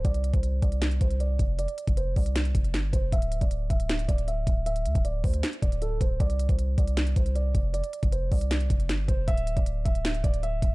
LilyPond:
<<
  \new Staff \with { instrumentName = "Grand piano" } { \time 4/4 \key d \minor \tempo 4 = 156 d''8. c''8. d''4 c''8 d''4 | d''4 c''8 d''2 c''8 | e''8. d''8. e''4 d''8 e''4 | e''4 d''8 c''8 r8 d''8 a'8 c''8 |
d''8. c''8. d''4 c''8 d''4 | d''4 c''8 d''2 c''8 | e''8. d''8. e''4 d''8 e''4 | }
  \new Staff \with { instrumentName = "808-style bass" } { \clef bass \time 4/4 \key d \minor c,8. c,8. c,4 c,4 f,,8~ | f,,16 r8 f,,8. c,4 f,,8 g,,8 f,,8 | d,,8. d,,8. d,,4 d,,4 d,,8~ | d,,8 d,16 d,,8. d,8 r8 d,,4 d,,8 |
c,8. c,8. c,4 c,4 f,,8~ | f,,16 r8 f,,8. c,4 f,,8 g,,8 f,,8 | d,,8. d,,8. d,,4 d,,4 d,,8 | }
  \new DrumStaff \with { instrumentName = "Drums" } \drummode { \time 4/4 <hh bd>16 hh16 hh16 <hh bd>16 hh8 <hh bd>16 hh16 <hc hh sn>16 hh16 <hh bd>16 hh16 hh8 <hh bd>8 | hh16 hh16 hh16 <hh bd>16 hh8 <hho bd>16 hh16 <hc hh sn>16 hh16 <hh bd>16 hh16 <hc hh sn>8 <hh bd>8 | <hh bd>16 hh16 hh16 <hh bd>16 hh8 <hh bd>16 hh16 <hc hh sn>16 hh16 <hh bd>16 hh16 hh8 <hh bd>8 | hh16 hh16 hh16 <hh bd>16 hh8 <hho bd>16 hh16 <hc hh sn>16 hh16 <hh bd>16 hh16 hh8 <hh bd>8 |
<hh bd>16 hh16 hh16 <hh bd>16 hh8 <hh bd>16 hh16 <hc hh sn>16 hh16 <hh bd>16 hh16 hh8 <hh bd>8 | hh16 hh16 hh16 <hh bd>16 hh8 <hho bd>16 hh16 <hc hh sn>16 hh16 <hh bd>16 hh16 <hc hh sn>8 <hh bd>8 | <hh bd>16 hh16 hh16 <hh bd>16 hh8 <hh bd>16 hh16 <hc hh sn>16 hh16 <hh bd>16 hh16 hh8 <hh bd>8 | }
>>